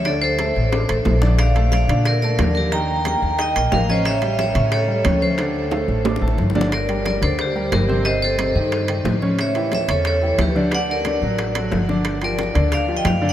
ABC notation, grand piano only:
X:1
M:4/4
L:1/8
Q:1/4=180
K:Dphr
V:1 name="Grand piano"
[D,Dd]2 [A,Aa]2 [Ddd'] [A,Aa]2 [D,Dd]- | [D,Dd] [A,Aa]2 [D,Dd]2 [A,Aa] [D,Dd]2 | [E,Ee]2 [B,Bb]2 [Eee'] [B,Bb]2 [^C,^C^c]- | [^C,^C^c] [G,Gg]2 [C,Cc]2 [G,Gg] [C,Cc]2 |
[D,Dd]2 [A,Aa]2 [Ddd'] [A,Aa]2 [D,Dd] | [K:Gm] z [G,GB] [G,GB] [D,Dd]2 [G,GB]2 [C,Cc] | [C,Cc]2 [C,Cc] [E,EG]2 [E,EG]2 [^C,^C^c]- | [^C,^C^c] [=E,=EG] [E,EG] [C,Cc]2 [E,EG]2 [D,Dd] |
[D,Dd]2 [D,Dd] [^F,^F]2 [F,FA]2 [D,Dd]- | [D,Dd] [F,FG] [F,FG] [D,Dd]2 [F,FG]2 [D,Dd] |]